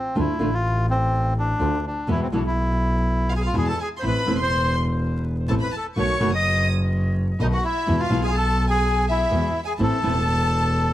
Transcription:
Already playing: C4
0.15 D2 D3 A3 D4 F4
0.19 E4
0.39 A1 D3 A3 D4 F4
0.54 F4
0.90 C4
1.39 D4
1.59 D2 D3 A3 D4 F4
1.87 D4
2.08 E2 B2 E3 G#3 B3 E4
2.23 C4
2.32 B1 B2 E3 G#3 B3 D4 E4
2.47 E4
3.31 F4 F5
3.36 G#4 G#5
3.44 F4 F5
3.53 E2 B2 E3 G#3 B3 E4
3.57 G#4 G#5
3.68 A4 A5
3.81 G#4 G#5
3.97 C5 C6
4.02 A1 E3 A3 C4 E4 B5
4.07 B4
4.26 E1 E3 A3 C4 E4
4.40 C5 C6
5.48 A1 E3 A3 C4 E4 A4 A5
5.60 B4 B5
5.72 A5
5.77 A4
5.96 B1 B2 D#3 A3 B3 F#4 C#5 C#6
6.20 F#1 B2 D#3 A3 B3 F#4
6.34 D#5 D#6
7.39 B1 B2 D#3 A3 B3 D#4 F#4 D#5
7.53 F#4 F#5
7.65 E4 E5
7.87 E2 B2 E3 G#3 B3 E4
7.99 F4 F5
8.10 B1 B2 E3 G#3 B3 E4
8.23 G#4 F5 G#5
8.27 F4 G#4 G#5
8.35 A4 A5
8.68 G#4 G#5
9.08 E4 E5
9.30 E2 B2 E3 G#3 B3 E4
9.64 G#4 G#5
9.79 A1 E3 A3 C4 E4 A5
9.83 A4
10.03 E1 E3 A3 C4 E4

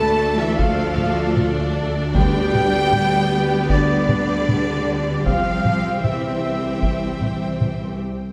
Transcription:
Already playing: D2 A3 D4 A4 D5 A5
0.38 E3 E4 E5
0.57 F3 F4 F5, taiko
0.97 taiko mid
1.37 taiko mid
2.12 D3 G3 B3 G4 B4 G5, taiko
2.54 taiko mid
2.93 taiko mid
3.69 D3 D4 D5, taiko
4.09 taiko mid
4.48 taiko mid
5.25 C2 F3 C4 F4 C5 F5 G5, taiko
5.65 taiko mid
6.03 E3 E4 E5, taiko mid
6.83 taiko
7.21 taiko mid
7.61 taiko mid

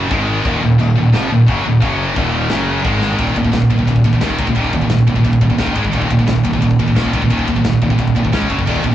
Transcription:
Already playing: F#2 C#3 F#3
0.10 G#1 G#2 D#3 G#3, kick, china
0.44 D#1 D#2 A#2 D#3, kick, china
0.62 D#1 D#2 A#2
0.79 D#1 D#2 A#2, china
0.97 D#1 D#2 A#2
1.13 F1 F2 C3 F3, snare, china
1.30 D#1 D#2 A#2
1.48 F#1 F#2 C#3 F#3, kick, china
1.64 D#1 D#2 A#2
1.81 F#1 F#2 C#3 F#3, kick, china
2.16 D#1 D#2 A#2 D#3, kick, china
2.50 F#1 F#2 C#3 F#3, snare, china
2.84 G#1 G#2 D#3 G#3, kick, china
3.01 snare
3.18 D#1 D#2 A#2 D#3, kick, ride
3.27 kick
3.35 D#1 D#2 A#2, kick, ride
3.43 D#2 A#2, kick
3.52 D#1 D#2 A#2, kick, snare, ride
3.62 kick
3.70 D#2 A#2, kick, ride
3.78 D#2 A#2, kick
3.87 D#1 D#2 A#2, kick, ride
3.96 kick
4.04 A#1 D#2 A#2, kick, ride
4.13 D#2 A#2, kick
4.21 D#1 D#2 A#2 D#3, kick, snare, ride
4.30 kick
4.38 C#2 D#2 A#2 D#3, kick, ride
4.47 D#2 A#2, kick
4.55 D#1 D#2 A#2 D#3, kick, ride
4.64 kick
4.72 D#1 D#2 A#2, kick, ride
4.82 D#2 A#2, kick
4.90 F#1 D#2 A#2, kick, snare, ride
4.99 kick
5.07 D#1 D#2 A#2, kick, ride
5.15 D#2 A#2, kick
5.24 D#1 D#2 A#2, kick, ride
5.33 kick
5.41 D#1 D#2 A#2, kick, ride
5.49 D#2 A#2, kick
5.58 D#1 D#2 A#2 D#3, kick, snare, ride
5.67 kick
5.74 G#1 G#2 D#3 G#3, kick, ride
5.83 G#2 D#3, kick
5.91 D#1 D#2 A#2 D#3, kick, ride
6.02 kick
6.08 D#1 D#2 A#2, kick, ride
6.19 D#2 A#2, kick
6.26 D#1 D#2 A#2, kick, snare, ride
6.36 kick
6.44 D#2 A#2, kick, ride
6.53 D#2 A#2, kick
6.61 D#1 D#2 A#2, kick, ride
6.71 kick
6.79 A#1 D#2 A#2, kick, ride
6.87 D#2 A#2, kick
6.95 D#1 D#2 A#2 D#3, kick, snare, ride
7.05 kick
7.13 C#2 D#2 A#2 D#3, kick, ride
7.22 D#2 A#2, kick
7.30 D#1 D#2 A#2 D#3, kick, ride
7.39 kick
7.48 D#1 D#2 A#2, kick, ride
7.56 D#2 A#2, kick
7.64 F#1 D#2 A#2, kick, snare, ride
7.73 kick
7.81 D#1 D#2 A#2, kick, ride
7.90 D#2 A#2, kick
7.98 D#1 D#2 A#2, kick, ride
8.08 kick
8.15 D#1 D#2 A#2, kick, ride
8.23 D#2 A#2, kick
8.32 C#2 C#3 G#3 C#4, kick, snare, ride
8.42 kick
8.49 F#1 F#2 C#3 F#3, kick, ride
8.58 F#2 C#3, kick
8.66 D#1 D#2 A#2 D#3, kick, crash
8.76 kick
8.83 D#1 D#2 A#2, kick, ride
8.92 A#2

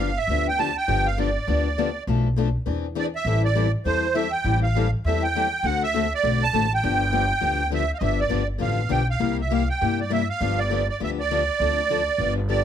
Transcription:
Already playing: G1 F5
0.00 G4
0.17 E5
0.27 D2 D3 F3 B3 D4 G4
0.48 G5
0.59 D3 F3 B3 D4 G4 A5
0.77 G5
0.88 G1 D3 F3 B3 D4 G4
1.07 F5
1.18 D3 F3 B3 D4 G4 D5
1.47 D2 D3 F3 B3 D4 G4
1.78 D3 F3 B3 D4 G4
2.07 B1 B2 F3 A3 D4 A4
2.36 B2 F3 A3 D4 A4
2.66 E2 E3 C4 D4 G#4
2.95 E3 C4 D4 G#4 D5
3.15 E5
3.25 A1 E3 G3 C4 E4 A4
3.45 D5
3.55 E3 G3 C4 E4 A4
3.85 E2 E3 G3 C4 E4 A4 C5
4.14 E3 G3 C4 E4 A4 E5
4.31 G5
4.44 A1 E3 G3 C4 E4 A4
4.63 F5
4.75 E3 G3 C4 E4 A4
5.05 E2 E3 G3 C4 E4 A4 E5
5.23 G5
5.35 E3 G3 C4 E4 A4
5.63 D2 D3 A3 C4 F#4 A4 F#5
5.83 E5
5.94 D3 A3 C4 F#4 A4
6.15 D5
6.23 B1 D3 A3 C4 F#4 A4
6.43 A5
6.53 A1 D3 A3 C4 F#4 A4
6.74 G5
6.83 G1 D3 F3 B3 D4 G4
7.12 D3 F3 B3 D4 G4
7.41 D2 D3 F3 B3 D4 G4
7.70 D3 F3 B3 D4 G4 E5
7.94 F5
7.99 G1 D3 F3 B3 D4 G4 D#5 E5
8.20 D5
8.29 G1 D3 F3 B3 D4 G4
8.58 A1 D3 F3 B3 D4 G4 F5
8.89 B1 D3 F3 B3 D4 G4 G5
9.10 F5
9.19 C2 C3 G3 A#3 E4 G4
9.41 E5
9.51 C3 G3 A#3 E4 G4 F5
9.69 G5
9.81 G2 C3 G3 A#3 E4 G4
10.01 D5
10.10 C3 G3 A#3 E4 G4 E5
10.29 F5
10.40 G1 D3 F3 B3 D4 G4
10.59 D5
10.70 D3 F3 B3 D4 G4
10.89 D5
11.00 D2 D3 F3 B3 D4 G4 E5
11.20 D5
11.31 D3 F3 B3 D4 G4
11.60 D2 D3 F3 C4 D4 A4
11.90 D3 F3 C4 D4 A4
12.18 G1 D3 F3 B3 D4 G4
12.49 D3 F3 B3 D4 G4 D5

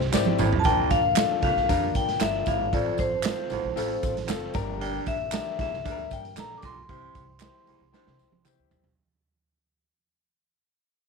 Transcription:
Already playing: E3 C4 G4
0.01 snare
0.12 G#1 C4 E4 G4 D5, snare, clap, tambourine
0.26 high tom
0.38 A1 A2, mid tom, tambourine
0.53 floor tom
0.59 A5
0.64 A#1 A#2 D3 A#3 C4 F4 A#4 G5, kick, closed hi-hat, tambourine
0.71 D4
0.90 A#1 F5, kick, closed hi-hat, tambourine
1.16 D4 F4 A4, snare, clap, closed hi-hat, tambourine
1.42 C2 F2 F5, kick, snare, closed hi-hat
1.56 A#1, snare
1.68 F2 G2 D4 F4 A#4, kick, closed hi-hat, tambourine
1.95 A#2 G5, kick, closed hi-hat, tambourine
2.09 snare, closed hi-hat
2.20 G1 D4 F4 A#4 E5, snare, clap, closed hi-hat, tambourine
2.46 G#1 A2 F5, kick, closed hi-hat, tambourine
2.72 A1 F2 F3 C4 F4 A4 D5, kick, closed hi-hat
2.98 A1 C5, kick, closed hi-hat, tambourine
3.23 C4 F4 B4, snare, clap, closed hi-hat, tambourine
3.31 C5
3.50 A1 E2, closed hi-hat, tambourine
3.64 A#1
3.76 A1 F2 C4 F4 A4, closed hi-hat, tambourine
3.90 closed hi-hat
4.03 A1, kick, closed hi-hat, tambourine
4.17 snare, closed hi-hat
4.27 F#1 C4 F4 A4, snare, clap, closed hi-hat, tambourine
4.54 G1 D3 A#3 D4 G4 A#4, kick, closed hi-hat, tambourine
4.80 G2 G5, closed hi-hat
5.06 A#1 E5, kick, closed hi-hat, tambourine
5.32 D4 G4 A#4, snare, clap, closed hi-hat, tambourine
5.59 A#1 E2 E5, kick, snare, closed hi-hat
5.72 C2, snare
5.84 D2 G2 D4 G4 A4, kick, closed hi-hat, tambourine
5.91 A#4
5.98 closed hi-hat
6.11 G2 G5, kick, closed hi-hat, tambourine
6.25 closed hi-hat
6.36 A#1 D4 G4 A4 A#5, snare, clap, closed hi-hat, tambourine
6.58 D6
6.62 B1 A#2 C6, kick, closed hi-hat, tambourine
6.89 C2 C3 E3 C4 E4 G4 C5, kick, closed hi-hat
7.15 C2, kick, closed hi-hat, tambourine
7.40 E4 G4 C5, snare, clap, closed hi-hat, tambourine
7.67 C2 E2, closed hi-hat
7.81 C2
7.92 G2 E4 G4 C5, snare, tambourine
8.07 C3, snare
8.19 C2, tambourine
8.32 C2, high tom
8.44 E4 G4 C5, clap, mid tom, tambourine
8.59 D2
8.71 A#1, floor tom, tambourine
8.84 B1, floor tom

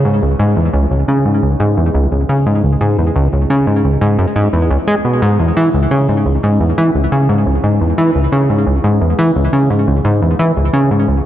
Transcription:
0.05 G#2
0.22 C#2
0.39 G#2
0.57 E2
0.74 C#2
0.91 C#2
1.08 C#3
1.25 G#2
1.43 C#2
1.60 G#2
1.77 E2
1.94 C#2
2.12 C#2
2.29 C#3
2.46 G#2
2.64 C#2
2.81 G#2
2.98 E2
3.16 C#2
3.33 C#2
3.50 C#3
3.67 G#2
3.85 C#2
4.01 G#2
4.19 F#2
4.36 G#2
4.53 E2
4.71 C#2
4.88 G#3
5.05 B2
5.22 G#2
5.40 E2
5.57 E3
5.74 C#2
5.91 C#3
6.09 G#2
6.26 C#2
6.43 G#2
6.60 E2
6.78 E3
6.95 C#2
7.12 C#3
7.29 G#2
7.46 C#2
7.64 G#2
7.81 E2
7.98 E3
8.15 C#2
8.32 C#3
8.50 G#2
8.67 C#2
8.84 G#2
9.01 E2
9.19 E3
9.36 C#2
9.53 C#3
9.70 G#2
9.87 C#2
10.05 G#2
10.22 E2
10.39 E3
10.57 C#2
10.73 C#3
10.91 G#2
11.08 C#2

